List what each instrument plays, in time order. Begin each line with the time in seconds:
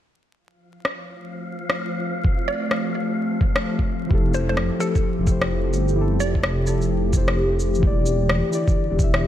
0.38 synth texture F3 F5, ambient pad F3
0.55 ambient pad C4
0.84 ambient pad A3, cross-stick
1.70 ambient pad G4, cross-stick
2.25 kick
2.48 synth pluck D5
2.71 cross-stick
3.41 kick
3.56 cross-stick
3.79 kick
4.06 synth keys F3 E4
4.11 detuned saw bass F1, synth keys G4 A4, kick
4.34 synth pluck C5, shaker
4.49 synth pluck C5
4.57 cross-stick
4.79 synth keys F3 E4 G4 A4, synth pluck A4, shaker
4.95 kick, shaker
5.19 detuned saw bass F1, synth keys F3
5.26 synth keys E4 G4, kick, shaker
5.31 synth keys C5
5.42 cross-stick
5.73 detuned saw bass G1, shaker
5.88 shaker
5.93 synth keys F3 E4
5.98 synth keys G4 A4
6.20 detuned saw bass F1, synth pluck D5, shaker
6.35 kick
6.43 cross-stick
6.65 synth keys F3 E4 G4, shaker
6.69 synth keys A4
6.82 shaker
7.09 synth keys F3 E4, kick, shaker
7.15 synth keys G4 C5
7.28 cross-stick
7.60 shaker
7.75 shaker
7.79 detuned saw bass E1, synth keys E3 E4, kick
7.83 ambient pad D3, synth keys G4 D5
8.06 shaker
8.27 ambient pad G3, cross-stick
8.50 synth keys E3 E4 G4, shaker
8.55 synth keys D5
8.68 kick, shaker
8.91 detuned saw bass E1
8.95 synth keys E3 E4, kick, shaker
9.01 synth keys G4 E5
9.14 cross-stick